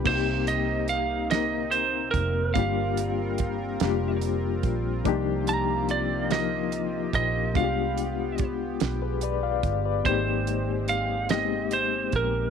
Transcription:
0.04 2.10 C2 loud
0.04 2.53 C3 medium
0.04 1.23 A#3 medium
0.04 2.53 A#3 medium
0.04 1.24 C4 medium
0.04 7.52 C4 medium
0.04 2.53 D#4 medium
0.04 1.25 D#4 medium
0.04 0.49 C5 loud
0.04 kick loud
0.04 crash loud
0.09 0.14 F#4 medium
0.15 1.28 G4 medium
0.47 0.89 D#5 loud
0.47 closed hi-hat medium
0.88 1.31 F5 loud
0.88 closed hi-hat medium
1.31 2.49 A#3 medium
1.31 2.50 C4 medium
1.31 2.50 D#4 medium
1.31 1.74 D#5 loud
1.31 snare loud
1.31 closed hi-hat medium
1.35 2.51 A#4 medium
1.71 2.11 C5 medium
1.71 closed hi-hat medium
2.11 2.56 F1 loud
2.11 2.51 A#4 medium
2.11 kick medium
2.11 closed hi-hat soft
2.54 3.77 G1 loud
2.54 5.03 G3 medium
2.54 3.73 G3 medium
2.54 3.74 A#3 medium
2.54 3.74 D4 medium
2.54 10.01 F4 medium
2.54 3.75 F4 medium
2.54 5.02 A#4 medium
2.54 4.17 F5 loud
2.54 kick loud
2.54 closed hi-hat medium
2.59 3.75 G4 medium
2.97 closed hi-hat medium
3.38 kick medium
3.38 closed hi-hat soft
3.80 4.60 F1 loud
3.80 4.99 G3 medium
3.80 4.99 A#3 medium
3.80 5.00 D4 medium
3.80 5.00 F4 medium
3.80 snare loud
3.80 closed hi-hat medium
3.85 5.01 G4 medium
4.22 closed hi-hat medium
4.63 5.02 A#1 medium
4.63 kick medium
4.63 closed hi-hat soft
5.04 7.10 C2 loud
5.04 7.52 C3 medium
5.04 6.23 F3 loud
5.04 7.52 A#3 medium
5.04 6.24 A#3 loud
5.04 6.24 D4 loud
5.04 6.25 D#4 medium
5.04 12.50 G4 medium
5.04 kick loud
5.04 closed hi-hat medium
5.08 6.25 G4 loud
5.47 5.87 A#5 loud
5.47 closed hi-hat medium
5.89 6.32 D5 medium
5.89 closed hi-hat medium
6.30 7.48 F3 medium
6.30 7.49 A#3 medium
6.30 7.50 D#4 medium
6.30 7.49 F4 medium
6.30 7.50 A#4 medium
6.30 7.14 D#5 loud
6.30 snare loud
6.30 closed hi-hat medium
6.72 closed hi-hat medium
7.13 7.56 A#1 loud
7.13 7.56 D#5 loud
7.13 kick medium
7.13 closed hi-hat soft
7.54 8.77 C2 loud
7.54 8.73 G#3 medium
7.54 8.73 B3 medium
7.54 10.03 B3 medium
7.54 8.74 D4 medium
7.54 8.74 F4 medium
7.54 7.63 F#4 medium
7.54 8.46 F5 medium
7.54 kick loud
7.54 closed hi-hat medium
7.64 8.78 G4 medium
7.98 closed hi-hat medium
8.38 kick loud
8.38 closed hi-hat medium
8.80 9.60 B1 medium
8.80 snare loud
8.80 closed hi-hat medium
9.02 9.22 G#4 medium
9.02 9.21 B4 medium
9.21 9.43 B4 medium
9.21 9.42 D5 medium
9.21 closed hi-hat medium
9.43 9.83 D5 medium
9.43 9.83 F5 medium
9.63 10.02 G1 medium
9.63 kick medium
9.63 closed hi-hat soft
9.85 10.25 B4 medium
9.85 10.25 D5 medium
10.04 12.10 G#1 loud
10.04 11.23 G#3 medium
10.04 12.50 G#3 medium
10.04 11.24 A#3 medium
10.04 11.24 C4 medium
10.04 12.50 C4 medium
10.04 11.24 D#4 medium
10.04 10.85 C5 loud
10.04 kick loud
10.04 closed hi-hat medium
10.09 11.25 G4 loud
10.47 closed hi-hat medium
10.88 11.30 F5 loud
10.88 closed hi-hat medium
11.29 12.48 G#3 medium
11.29 12.49 A#3 medium
11.29 11.38 B3 medium
11.29 11.73 D#5 loud
11.29 snare loud
11.29 closed hi-hat medium
11.33 12.50 D#4 medium
11.33 12.50 G4 medium
11.39 12.50 C4 medium
11.71 12.16 C5 medium
11.71 closed hi-hat medium
12.12 12.50 A#1 medium
12.12 12.50 A#4 medium
12.12 kick medium
12.12 closed hi-hat soft

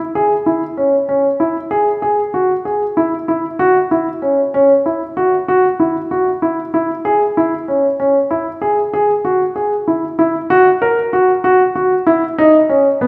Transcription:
0.15 0.32 G#4 medium
0.46 0.63 E4 medium
0.77 0.94 C#4 medium
1.09 1.25 C#4 medium
1.40 1.57 E4 medium
1.71 1.88 G#4 medium
2.02 2.19 G#4 medium
2.34 2.51 F#4 medium
2.65 2.82 G#4 medium
2.97 3.14 E4 medium
3.28 3.45 E4 medium
3.59 3.76 F#4 medium
3.91 4.08 E4 medium
4.22 4.39 C#4 medium
4.54 4.71 C#4 medium
4.86 5.02 E4 medium
5.17 5.33 F#4 medium
5.48 5.65 F#4 medium
5.80 5.96 E4 medium
6.11 6.28 F#4 medium
6.42 6.59 E4 medium
6.74 6.90 E4 medium
7.05 7.22 G#4 medium
7.37 7.54 E4 medium
7.68 7.85 C#4 soft
8.00 8.16 C#4 medium
8.31 8.47 E4 medium
8.62 8.78 G#4 medium
8.94 9.10 G#4 medium
9.25 9.41 F#4 medium
9.56 9.72 G#4 medium
9.88 10.04 E4 medium
10.19 10.35 E4 medium
10.50 10.67 F#4 medium
10.82 10.98 A#4 medium
11.13 11.30 F#4 medium
11.44 11.61 F#4 medium
11.76 11.92 F#4 medium
12.07 12.23 E4 medium
12.38 12.55 D#4 medium
12.69 12.86 C#4 medium
13.01 13.07 B3 medium

